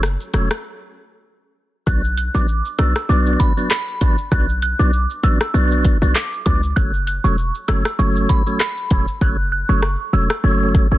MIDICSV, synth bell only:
0, 0, Header, 1, 2, 480
1, 0, Start_track
1, 0, Key_signature, 2, "minor"
1, 0, Tempo, 612245
1, 1465, Time_signature, 4, 2, 24, 8
1, 8608, End_track
2, 0, Start_track
2, 0, Title_t, "Synth bell"
2, 0, Program_c, 0, 98
2, 1465, Note_on_c, 0, 90, 107
2, 1551, Note_off_c, 0, 90, 0
2, 1705, Note_on_c, 0, 90, 68
2, 1791, Note_off_c, 0, 90, 0
2, 1840, Note_on_c, 0, 86, 82
2, 1993, Note_off_c, 0, 86, 0
2, 2184, Note_on_c, 0, 88, 79
2, 2337, Note_off_c, 0, 88, 0
2, 2424, Note_on_c, 0, 86, 84
2, 2510, Note_off_c, 0, 86, 0
2, 2663, Note_on_c, 0, 83, 74
2, 2749, Note_off_c, 0, 83, 0
2, 2904, Note_on_c, 0, 83, 92
2, 3257, Note_off_c, 0, 83, 0
2, 3385, Note_on_c, 0, 90, 93
2, 3470, Note_off_c, 0, 90, 0
2, 3626, Note_on_c, 0, 90, 87
2, 3712, Note_off_c, 0, 90, 0
2, 3759, Note_on_c, 0, 86, 82
2, 3912, Note_off_c, 0, 86, 0
2, 4105, Note_on_c, 0, 88, 78
2, 4258, Note_off_c, 0, 88, 0
2, 4823, Note_on_c, 0, 86, 76
2, 4909, Note_off_c, 0, 86, 0
2, 5062, Note_on_c, 0, 86, 76
2, 5148, Note_off_c, 0, 86, 0
2, 5301, Note_on_c, 0, 90, 111
2, 5388, Note_off_c, 0, 90, 0
2, 5544, Note_on_c, 0, 90, 68
2, 5630, Note_off_c, 0, 90, 0
2, 5677, Note_on_c, 0, 85, 81
2, 5831, Note_off_c, 0, 85, 0
2, 6022, Note_on_c, 0, 88, 83
2, 6176, Note_off_c, 0, 88, 0
2, 6263, Note_on_c, 0, 85, 87
2, 6349, Note_off_c, 0, 85, 0
2, 6502, Note_on_c, 0, 83, 74
2, 6588, Note_off_c, 0, 83, 0
2, 6744, Note_on_c, 0, 83, 95
2, 7096, Note_off_c, 0, 83, 0
2, 7225, Note_on_c, 0, 90, 90
2, 7311, Note_off_c, 0, 90, 0
2, 7464, Note_on_c, 0, 90, 85
2, 7550, Note_off_c, 0, 90, 0
2, 7597, Note_on_c, 0, 85, 81
2, 7751, Note_off_c, 0, 85, 0
2, 7945, Note_on_c, 0, 88, 78
2, 8098, Note_off_c, 0, 88, 0
2, 8608, End_track
0, 0, End_of_file